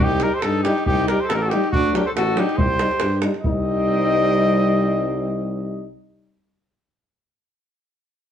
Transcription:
0.00 tuba C2, alto saxophone D#4, cornet G4
0.11 davul high
0.20 euphonium G3, trombone D#4, cornet A#4, davul high
0.25 alto saxophone G4
0.34 cornet C5
0.39 alto saxophone A4, cornet A4, davul high
0.44 tuba G2, alto saxophone D#4
0.63 euphonium G3, trombone D#4, cornet G4, davul high
0.68 alto saxophone D#4
0.78 davul high
0.86 tuba C2, cornet G4, davul low
0.92 alto saxophone D#4
0.99 davul high
1.08 euphonium G3, trombone D#4, alto saxophone G4, cornet A#4, davul high
1.21 cornet C5
1.25 alto saxophone A4
1.29 tuba A1, cornet A4 A#4, davul high
1.34 alto saxophone D#4
1.38 alto saxophone G4, cornet A4
1.45 alto saxophone F#4
1.49 euphonium G3, trombone D#4, cornet G4, davul high
1.54 alto saxophone D#4
1.64 davul high
1.72 tuba D2, alto saxophone D4, cornet F#4, davul low
1.85 davul high
1.93 euphonium F#3, trombone D4, alto saxophone G4, cornet A#4, davul high
2.06 alto saxophone A4, cornet C5
2.15 tuba A1, alto saxophone F#4, cornet A4, davul high
2.35 euphonium F#3, trombone D4, cornet G4, davul high
2.40 alto saxophone D#4
2.49 davul high
2.58 tuba C2, alto saxophone G4, cornet C5, davul low
2.79 euphonium G3, trombone D#4, davul high
2.91 davul high
3.00 tuba G2, davul high
3.22 euphonium G3, trombone D#4, davul high
3.34 davul high
3.42 tuba C2, euphonium G3, alto saxophone C4, cornet D#5, davul low
3.46 trombone D#4

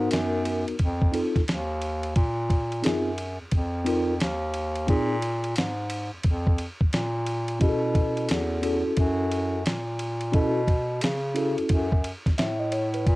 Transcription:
Already playing: tine electric piano B3 D#4 F#4 A#4
0.11 bass clarinet F#2, snare, hi-hat pedal, ride
0.45 ride
0.68 bass clarinet F2, ride
0.79 bass clarinet F2, kick, ride
1.02 kick
1.12 tine electric piano C4 D#4 F4 A4, ride
1.36 kick, snare, ride
1.48 bass clarinet D#2, snare, hi-hat pedal, ride
1.82 ride
2.03 ride
2.16 bass clarinet A#2, kick, ride
2.50 kick, ride
2.72 ride
2.82 bass clarinet F#2, tine electric piano C4 D#4 F4 G#4, snare, hi-hat pedal, ride
3.18 ride
3.41 bass clarinet F2
3.51 bass clarinet F2, kick, ride
3.85 tine electric piano C4 D#4 F4 A#4, ride
4.20 bass clarinet D#2, snare, hi-hat pedal, ride
4.54 ride
4.76 ride
4.87 bass clarinet A#2, tine electric piano C4 D#4 F4 G#4, kick, ride
5.22 ride
5.44 ride
5.56 bass clarinet G#2, snare, hi-hat pedal, ride
5.90 ride
6.13 bass clarinet F2
6.24 bass clarinet F2, kick, ride
6.47 kick
6.58 ride
6.81 kick
6.93 bass clarinet A#2, snare, hi-hat pedal, ride
7.27 ride
7.48 ride
7.59 bass clarinet B2, tine electric piano C#4 E4 F#4 G#4, kick, ride
7.69 tine electric piano A4
7.95 kick, ride
8.17 ride
8.29 bass clarinet E2, snare, hi-hat pedal, ride
8.62 tine electric piano C#4 E4 F#4 A4, ride
8.86 bass clarinet F#2
8.97 bass clarinet F#2, kick, ride
9.32 ride
9.66 bass clarinet A#2, snare, hi-hat pedal, ride
9.99 ride
10.21 ride
10.32 bass clarinet B2, tine electric piano C#4 E4 F#4 A4, kick, ride
10.68 kick, ride
11.01 bass clarinet C#3, snare, hi-hat pedal, ride
11.34 tine electric piano C#4 E4 F#4 A4, ride
11.58 bass clarinet F#2, ride
11.69 bass clarinet F#2, kick, ride
11.92 kick
12.04 ride
12.26 kick, snare, ride
12.38 bass clarinet A2, tine electric piano E5, snare, hi-hat pedal, ride
12.60 tine electric piano D#5
12.72 tine electric piano C#5, ride
12.94 tine electric piano B4, ride
13.07 bass clarinet A#2, kick, ride

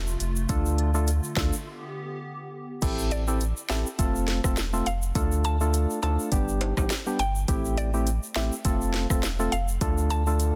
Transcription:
Already playing: sub bass E1, analog synth pad C3 A3 F4
0.07 shaker
0.20 sub bass F1, closed hi-hat, shaker
0.36 shaker
0.49 sub bass D2, analog synth pad D3, synth stab A3 D4 F4 A4, kick, closed hi-hat, shaker
0.66 shaker
0.78 closed hi-hat
0.94 synth stab A3 D4 F4 A4, shaker
1.07 closed hi-hat, shaker
1.24 shaker
1.36 sub bass D2, synth stab A3 D4 F4 A4, kick, snare, closed hi-hat
1.53 shaker
1.66 analog synth pad B3 G4
2.82 sub bass A1, synth stab C4 E4 G4 A4, kick, closed hi-hat, crash, shaker
2.99 shaker
3.11 synth pluck D5, closed hi-hat, shaker
3.27 synth stab C4 E4 G4 A4, shaker
3.41 closed hi-hat, shaker
3.57 shaker
3.69 sub bass A1, synth stab C4 E4 G4 A4, synth pluck E5, snare, closed hi-hat, shaker
3.86 shaker
3.98 sub bass F1, synth stab A3 C4 F4 A4, kick, closed hi-hat, shaker
4.15 shaker
4.28 snare, closed hi-hat
4.44 sub bass E1, synth stab A3 C4 F4 A4, kick, cross-stick, shaker
4.57 snare, closed hi-hat, shaker
4.73 synth stab A3 C4 F4 A4, shaker
4.86 sub bass F1, synth pluck F5, closed hi-hat, shaker
5.02 shaker
5.15 sub bass D2, synth stab A3 D4 F4 A4, kick, closed hi-hat, shaker
5.32 shaker
5.44 synth pluck A5, closed hi-hat, shaker
5.61 synth stab A3 D4 F4 A4, shaker
5.74 closed hi-hat, shaker
5.90 shaker
6.02 sub bass D2, synth stab A3 D4 F4 A4, synth pluck A5, closed hi-hat, high timbale, shaker
6.19 shaker
6.32 sub bass G1, synth stab G3 B3 D4 G4, kick, closed hi-hat, shaker
6.48 shaker
6.61 closed hi-hat, high timbale
6.77 sub bass A1, synth stab G3 B3 D4 G4, kick, cross-stick, high timbale, shaker
6.90 snare, closed hi-hat, shaker
7.06 synth stab G3 B3 D4 G4, shaker
7.19 sub bass G1, synth pluck G5, closed hi-hat, shaker
7.35 shaker
7.48 sub bass A1, synth stab A3 C4 E4 G4, kick, closed hi-hat, shaker
7.65 shaker
7.77 synth pluck D5, closed hi-hat, shaker
7.94 synth stab A3 C4 E4 G4, shaker
8.07 closed hi-hat, shaker
8.23 shaker
8.35 sub bass A1, synth stab A3 C4 E4 G4, synth pluck E5, snare, closed hi-hat, shaker
8.52 shaker
8.65 sub bass F1, synth stab A3 C4 F4 A4, kick, closed hi-hat, shaker
8.81 shaker
8.94 snare, closed hi-hat
9.10 sub bass E1, synth stab A3 C4 F4 A4, kick, cross-stick, shaker
9.23 snare, closed hi-hat, shaker
9.39 synth stab A3 C4 F4 A4, shaker
9.52 sub bass F1, synth pluck F5, closed hi-hat, shaker
9.68 shaker
9.81 sub bass D2, synth stab A3 D4 F4 A4, kick, closed hi-hat, shaker
9.98 shaker
10.10 synth pluck A5, closed hi-hat, shaker
10.27 synth stab A3 D4 F4 A4, shaker
10.40 closed hi-hat, shaker

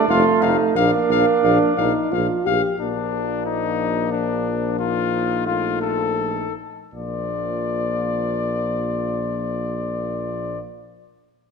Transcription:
0.08 tuba F1, euphonium A3, french horn D#4, flugelhorn F4, trumpet F5
0.41 tuba F1, flugelhorn D#4, french horn D#4, trumpet F5
0.75 tuba A#1, euphonium A#3, french horn D4, flugelhorn D4, trumpet F5
1.09 tuba A#1, french horn D4, trumpet F5
1.43 tuba A#1, french horn D4, trumpet F5
1.77 tuba A#1, french horn D#4, trumpet F5
2.12 tuba A#1, french horn F4, trumpet F5
2.46 tuba A#1, french horn G4, trumpet F5
2.80 tuba A#1, euphonium F3, french horn A#3, flugelhorn D4, trumpet D4
3.46 trumpet D#4
4.12 trumpet D4
4.79 flugelhorn D#4, trumpet F4
5.45 french horn A3, trumpet F4
5.81 trumpet A4
6.93 tuba A#1, euphonium F3, french horn A#3, flugelhorn F4, trumpet D5

